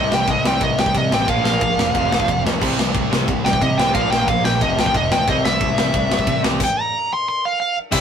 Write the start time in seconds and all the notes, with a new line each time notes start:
Already playing: C2 C3 G3 C4 D#5
0.11 C2 C3 G3 G5, snare
0.28 C2 C3 G3 D#5, kick, ride
0.45 C2 C3 G3 C4 G5, snare
0.61 C2 C3 G3 D#5, kick, ride
0.78 C2 C3 G3 G5, snare
0.86 kick
0.94 C3 G3 D#5, kick, ride
1.11 A1 C3 G3 C4 G5, snare
1.27 A#1 A#2 F3 A#3 F5, kick, ride
1.44 A#1 A#2 F3 A#3 F5, snare
1.61 A#1 A#2 F3, kick, ride
1.77 E1 A#2 F3, snare
1.94 F1 F2 C3 F3, kick, ride
2.10 C2 F2 C3 F3, snare
2.20 kick
2.27 F1 F2 C3, kick, ride
2.44 C2 F2 C3, snare
2.59 C2 C3 G3 C4, kick, crash
2.77 C2 C3 G3, snare
2.94 C2 C3 G3, kick, ride
3.10 C2 C3 G3 C4, snare
3.27 C2 C3 G3, kick, ride
3.44 C2 C3 G3 G5, snare
3.53 kick
3.61 C3 G3 D#5, kick, ride
3.78 C2 C3 G3 C4 G5, snare
3.94 A#1 A#2 F3 A#3 F5, kick, ride
4.11 A#1 A#2 F3 A#3 G5, snare
4.28 A#1 A#2 F3 F5, kick, ride
4.44 A#1 A#2 F3 G5, snare
4.61 F1 F2 C3 F3 D#5, kick, ride
4.78 C2 F2 C3 F3 G5, snare
4.86 kick
4.95 F1 F2 C3 D#5, kick, ride
5.11 D2 F2 C3 G5, snare
5.28 C2 C3 G3 C4 D#5, kick, ride
5.44 C2 C3 G3 E5, snare
5.61 C2 C3 G3, kick, ride
5.78 C2 C3 G3 C4, snare
5.93 C2 C3 G3, kick, ride
6.09 C2 C3 G3, snare
6.19 kick
6.27 C3 G3, kick, ride
6.42 C2 C3 G3 C4, snare
6.60 G5, kick, crash
6.81 A#5
7.13 C6
7.29 C6
7.45 F5
7.60 F5
7.91 C2 C3 G3 C4 E4 E5, kick, crash